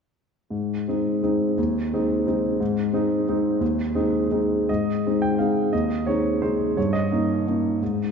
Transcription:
0.50 0.86 G#2 soft
0.88 1.20 G#3 soft
0.88 1.20 C4 soft
0.88 1.20 D#4 soft
1.23 1.54 G#3 soft
1.23 1.55 C4 soft
1.23 1.55 D#4 soft
1.58 1.92 D#2 soft
1.93 2.24 G#3 soft
1.93 2.24 C4 soft
1.93 2.25 D#4 soft
2.27 2.57 G#3 soft
2.27 2.57 C4 soft
2.27 2.57 D#4 soft
2.60 2.93 G#2 soft
2.93 3.24 G#3 soft
2.93 3.24 C4 soft
2.93 3.25 D#4 soft
3.29 3.58 G#3 soft
3.29 3.58 C4 soft
3.29 3.58 D#4 soft
3.60 3.92 D#2 soft
3.95 4.27 G#3 soft
3.95 4.27 C4 soft
3.95 4.27 D#4 soft
4.31 4.65 G#3 soft
4.31 4.65 C4 soft
4.31 4.65 D#4 soft
4.69 5.04 G#2 soft
4.69 5.22 D#5 soft
5.06 5.37 G#3 soft
5.06 5.37 C4 soft
5.06 5.37 D#4 soft
5.22 5.39 G5 soft
5.38 5.69 G#3 soft
5.38 5.70 C4 soft
5.38 5.70 D#4 soft
5.38 5.72 F5 soft
5.73 6.06 D#2 soft
5.73 6.06 D#5 soft
6.07 6.39 G#3 soft
6.07 6.39 C4 soft
6.07 6.40 D#4 soft
6.07 6.42 C#5 medium
6.42 6.73 G#3 soft
6.42 6.74 C4 soft
6.42 6.74 D#4 soft
6.42 6.77 C5 soft
6.77 7.10 G2 soft
6.77 6.93 C#5 soft
6.93 8.12 D#5 medium
7.11 7.43 A#3 soft
7.11 7.43 C#4 soft
7.11 7.44 D#4 soft
7.47 7.78 A#3 soft
7.47 7.78 C#4 soft
7.47 7.79 D#4 soft
7.82 8.12 G#2 soft

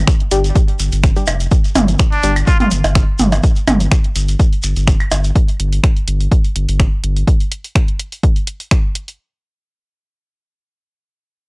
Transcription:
0.07 finger snap medium
0.07 kick loud
0.07 closed hi-hat soft
0.07 shekere medium
0.20 closed hi-hat soft
0.31 0.51 G1 medium
0.31 0.39 G3 loud
0.31 0.39 D4 medium
0.31 0.39 G4 loud
0.31 closed hi-hat loud
0.31 shekere medium
0.44 closed hi-hat soft
0.44 shekere soft
0.56 kick loud
0.56 closed hi-hat medium
0.56 shekere medium
0.68 closed hi-hat soft
0.79 0.90 G1 medium
0.79 closed hi-hat loud
0.79 shekere medium
0.92 1.11 G1 loud
0.92 closed hi-hat soft
0.92 shekere soft
1.03 finger snap medium
1.03 kick loud
1.03 closed hi-hat soft
1.03 shekere medium
1.16 1.23 G3 medium
1.16 1.23 D4 medium
1.16 1.23 G4 medium
1.16 closed hi-hat soft
1.16 shekere soft
1.27 1.47 F1 loud
1.27 closed hi-hat loud
1.27 percussion blips medium
1.27 claves medium
1.27 shekere loud
1.40 closed hi-hat soft
1.40 shekere soft
1.51 kick loud
1.51 closed hi-hat medium
1.51 shekere medium
1.64 closed hi-hat soft
1.64 shekere soft
1.76 1.95 G1 loud
1.76 closed hi-hat medium
1.76 mid tom medium
1.76 percussion blips medium
1.76 shekere medium
1.88 closed hi-hat soft
1.88 shekere soft
1.99 finger snap medium
1.99 kick loud
1.99 closed hi-hat soft
1.99 shekere medium
2.12 2.34 D4 medium
2.12 closed hi-hat soft
2.23 2.43 G1 medium
2.23 2.31 G3 loud
2.23 2.31 D4 medium
2.23 2.31 G4 loud
2.23 closed hi-hat loud
2.23 shekere medium
2.36 closed hi-hat soft
2.36 claves medium
2.36 shekere soft
2.47 2.56 F4 medium
2.47 kick loud
2.47 closed hi-hat soft
2.47 shekere medium
2.60 2.67 F4 medium
2.60 closed hi-hat soft
2.60 mid tom medium
2.71 2.82 G1 medium
2.71 closed hi-hat loud
2.71 shekere medium
2.84 3.03 G1 loud
2.84 closed hi-hat soft
2.84 percussion blips medium
2.84 shekere soft
2.95 finger snap medium
2.95 kick loud
2.95 closed hi-hat medium
2.95 shekere medium
3.19 3.39 G1 loud
3.19 closed hi-hat medium
3.19 mid tom medium
3.19 shekere medium
3.32 closed hi-hat soft
3.32 percussion blips medium
3.32 shekere soft
3.43 kick loud
3.43 closed hi-hat medium
3.43 shekere soft
3.55 closed hi-hat soft
3.55 shekere soft
3.67 3.87 G1 loud
3.67 closed hi-hat medium
3.67 mid tom medium
3.67 percussion blips medium
3.67 claves medium
3.67 shekere medium
3.80 closed hi-hat soft
3.80 shekere soft
3.91 finger snap medium
3.91 kick loud
3.91 closed hi-hat medium
3.91 shekere medium
4.04 closed hi-hat soft
4.15 4.35 G1 medium
4.15 closed hi-hat medium
4.15 shekere medium
4.28 closed hi-hat soft
4.28 shekere soft
4.40 kick loud
4.40 closed hi-hat medium
4.40 shekere medium
4.53 closed hi-hat soft
4.63 4.74 G1 medium
4.63 closed hi-hat medium
4.63 shekere medium
4.76 4.95 G1 loud
4.76 closed hi-hat soft
4.76 shekere soft
4.87 finger snap medium
4.87 kick loud
4.87 closed hi-hat medium
4.87 shekere medium
5.00 closed hi-hat soft
5.00 claves medium
5.11 5.31 G1 medium
5.11 closed hi-hat loud
5.11 percussion blips medium
5.11 shekere medium
5.24 closed hi-hat soft
5.24 shekere soft
5.35 kick loud
5.35 closed hi-hat medium
5.48 closed hi-hat soft
5.59 5.79 G1 loud
5.59 closed hi-hat medium
5.72 closed hi-hat soft
5.83 finger snap medium
5.83 kick loud
5.83 closed hi-hat medium
5.96 closed hi-hat soft
6.07 6.27 G1 medium
6.07 closed hi-hat medium
6.20 closed hi-hat soft
6.32 kick loud
6.32 closed hi-hat medium
6.44 closed hi-hat soft
6.55 6.66 G1 medium
6.55 closed hi-hat medium
6.68 6.87 G1 loud
6.68 closed hi-hat soft
6.79 finger snap medium
6.79 kick loud
6.79 closed hi-hat medium
7.03 7.23 G1 medium
7.03 closed hi-hat medium
7.16 closed hi-hat soft
7.27 kick loud
7.27 closed hi-hat medium
7.40 closed hi-hat soft
7.52 closed hi-hat medium
7.64 closed hi-hat soft
7.75 finger snap medium
7.75 kick loud
7.75 closed hi-hat medium
7.88 closed hi-hat soft
8.00 closed hi-hat medium
8.12 closed hi-hat soft
8.23 kick loud
8.23 closed hi-hat medium
8.36 closed hi-hat soft
8.47 closed hi-hat medium
8.60 closed hi-hat soft
8.71 finger snap medium
8.71 kick loud
8.71 closed hi-hat medium
8.95 closed hi-hat medium
9.08 closed hi-hat soft

